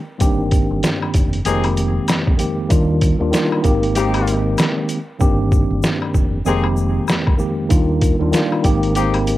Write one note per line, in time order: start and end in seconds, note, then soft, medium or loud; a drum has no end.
0.18 0.62 G1 loud
0.18 1.36 G2 loud
0.18 1.37 D#3 loud
0.18 1.37 A#3 medium
0.18 1.37 C4 medium
0.18 1.37 D4 medium
0.18 1.38 G4 loud
0.18 kick loud
0.18 closed hi-hat medium
0.18 shaker medium
0.51 kick loud
0.51 closed hi-hat medium
0.51 shaker soft
0.71 0.81 G1 medium
0.83 snare loud
0.83 closed hi-hat medium
0.83 shaker medium
1.02 high woodblock medium
1.14 1.41 F1 medium
1.14 kick loud
1.14 closed hi-hat medium
1.14 shaker medium
1.33 closed hi-hat medium
1.45 1.98 F1 loud
1.45 2.33 F2 loud
1.45 2.33 D#3 medium
1.45 2.33 G#3 medium
1.45 2.34 A#3 medium
1.45 1.65 C4 loud
1.45 2.34 C4 medium
1.45 1.65 D#4 medium
1.45 2.34 G4 loud
1.45 1.65 G#4 loud
1.45 closed hi-hat loud
1.45 shaker medium
1.64 closed hi-hat medium
1.64 high woodblock medium
1.77 closed hi-hat medium
1.77 shaker soft
2.08 snare loud
2.08 closed hi-hat medium
2.08 high woodblock medium
2.08 shaker medium
2.27 kick loud
2.37 2.67 F2 medium
2.37 2.68 D#3 medium
2.37 2.68 G#3 medium
2.37 2.68 A#3 medium
2.37 2.68 C4 medium
2.37 2.69 G4 medium
2.37 closed hi-hat medium
2.37 shaker soft
2.69 3.12 D#2 loud
2.69 3.15 D#3 loud
2.69 3.15 G3 medium
2.69 3.15 A#3 medium
2.69 3.16 D4 medium
2.69 3.16 F4 loud
2.69 kick loud
2.69 closed hi-hat medium
2.69 shaker medium
3.01 kick loud
3.01 closed hi-hat medium
3.01 shaker soft
3.19 3.31 D#2 loud
3.19 3.30 D#3 medium
3.19 3.31 G3 medium
3.19 3.31 A#3 medium
3.19 3.32 D4 medium
3.19 3.33 F4 loud
3.31 3.61 D#3 loud
3.31 3.64 G3 medium
3.31 3.63 A#3 medium
3.31 3.65 D4 medium
3.31 3.65 F4 loud
3.31 snare loud
3.31 closed hi-hat medium
3.31 shaker medium
3.52 high woodblock medium
3.63 4.54 G#1 loud
3.63 3.93 D#3 loud
3.63 3.93 G#3 medium
3.63 3.93 A#3 medium
3.63 3.94 C4 medium
3.63 3.94 G4 loud
3.63 kick loud
3.63 closed hi-hat medium
3.63 shaker medium
3.83 closed hi-hat medium
3.95 4.97 D#3 loud
3.95 4.98 G#3 medium
3.95 4.98 A#3 medium
3.95 4.38 C4 medium
3.95 4.98 C4 medium
3.95 4.38 D#4 loud
3.95 4.38 G4 loud
3.95 4.99 G4 loud
3.95 closed hi-hat loud
3.95 shaker medium
4.14 closed hi-hat medium
4.14 high woodblock medium
4.27 closed hi-hat medium
4.27 shaker medium
4.58 snare loud
4.58 closed hi-hat loud
4.58 high woodblock medium
4.58 shaker medium
4.89 closed hi-hat medium
4.89 shaker medium
5.19 5.62 G1 loud
5.19 6.36 G2 loud
5.19 6.37 D#3 medium
5.19 6.37 A#3 medium
5.19 6.37 C4 medium
5.19 6.37 D4 medium
5.19 6.38 G4 loud
5.19 kick loud
5.19 shaker medium
5.52 kick loud
5.52 shaker soft
5.71 5.81 G1 medium
5.83 snare loud
5.83 shaker medium
6.02 high woodblock medium
6.14 6.40 F1 medium
6.14 kick loud
6.14 shaker medium
6.45 6.98 F1 loud
6.45 7.33 F2 loud
6.45 7.33 D#3 medium
6.45 7.33 G#3 medium
6.45 7.34 A#3 medium
6.45 6.65 C4 loud
6.45 7.34 C4 medium
6.45 6.65 D#4 medium
6.45 7.34 G4 loud
6.45 6.65 G#4 loud
6.45 shaker medium
6.64 high woodblock medium
6.77 shaker medium
7.08 snare loud
7.08 high woodblock medium
7.08 shaker medium
7.27 kick loud
7.27 high woodblock medium
7.37 7.67 F2 medium
7.37 7.67 D#3 medium
7.37 7.68 G#3 medium
7.37 7.68 A#3 medium
7.37 7.69 C4 medium
7.37 7.69 G4 medium
7.37 shaker medium
7.69 8.12 D#2 loud
7.69 8.15 D#3 loud
7.69 8.15 G3 medium
7.69 8.16 A#3 medium
7.69 8.16 D4 medium
7.69 8.16 F4 loud
7.69 kick loud
7.69 closed hi-hat medium
7.69 shaker medium
8.01 kick loud
8.01 closed hi-hat medium
8.01 shaker soft
8.19 8.31 D#2 medium
8.19 8.30 D#3 medium
8.19 8.31 G3 medium
8.19 8.32 A#3 medium
8.19 8.32 D4 medium
8.19 8.33 F4 loud
8.31 8.61 D#3 loud
8.31 8.64 G3 medium
8.31 8.63 A#3 medium
8.31 8.65 D4 medium
8.31 8.65 F4 loud
8.31 snare loud
8.31 closed hi-hat medium
8.31 shaker medium
8.52 high woodblock medium
8.63 9.38 G#1 loud
8.63 8.93 D#3 loud
8.63 8.93 G#3 medium
8.63 8.93 A#3 medium
8.63 8.94 C4 medium
8.63 8.94 G4 loud
8.63 kick loud
8.63 closed hi-hat medium
8.63 shaker medium
8.83 closed hi-hat medium
8.95 9.38 D#3 medium
8.95 9.38 G#3 medium
8.95 9.38 A#3 medium
8.95 9.15 C4 medium
8.95 9.38 C4 medium
8.95 9.15 D#4 loud
8.95 9.15 G4 loud
8.95 9.38 G4 loud
8.95 closed hi-hat loud
8.95 shaker medium
9.14 closed hi-hat medium
9.14 high woodblock medium
9.27 closed hi-hat medium
9.27 shaker medium